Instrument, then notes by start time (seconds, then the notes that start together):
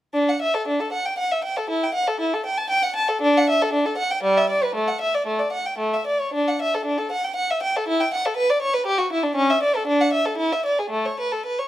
violin
0.13 D4
0.29 F#5
0.41 E5
0.54 A4
0.68 D4
0.80 A4
0.92 F#5
1.06 G5
1.18 F#5
1.32 E5
1.44 G5
1.57 A4
1.70 E4
1.83 G5
1.94 F#5
2.07 A4
2.20 E4
2.34 A4
2.46 G5
2.58 A5
2.70 G5
2.83 F#5
2.96 A5
3.08 A4
3.21 D4
3.37 F#5
3.49 E5
3.62 A4
3.73 D4
3.86 A4
3.97 F#5
4.11 G5
4.23 G3
4.37 E5
4.49 D5
4.63 B4
4.75 A3
4.88 F#5
5.01 E5
5.15 D5
5.27 A3
5.39 D5
5.52 F#5
5.66 G5
5.78 A3
5.94 E5
6.07 D5
6.21 C#5
6.34 D4
6.48 F#5
6.62 E5
6.74 A4
6.85 D4
6.98 A4
7.12 F#5
7.24 G5
7.36 F#5
7.50 E5
7.62 G5
7.76 A4
7.88 E4
8.01 G5
8.14 F#5
8.26 A4
8.37 B4
8.50 D5
8.62 C#5
8.74 B4
8.86 G4
8.98 F#4
9.13 E4
9.23 D4
9.36 C#4
9.50 E5
9.63 D5
9.76 A4
9.87 D4
10.01 F#5
10.13 E5
10.26 A4
10.38 E4
10.52 E5
10.66 D5
10.79 G#4
10.90 A3
11.05 C#5
11.20 B4
11.32 A4
11.46 B4
11.59 C#5